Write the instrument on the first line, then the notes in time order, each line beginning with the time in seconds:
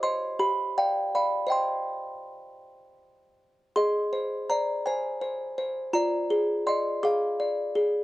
music box
0.03 C5 D#5 C6
0.39 G4 B5
0.78 D5 F5 G5
1.15 D5 F5 B5
1.47 C5 D#5 G5
1.52 C6
3.76 G#4 D#5 C6
4.13 C5
4.50 C5 D5 A#5
4.86 C5 G#5
5.21 C5
5.58 C5
5.93 F4 D5 A#5
6.30 G#4
6.67 D5 D#5 C6
7.03 G#4 F5 D6
7.40 D5
7.75 G#4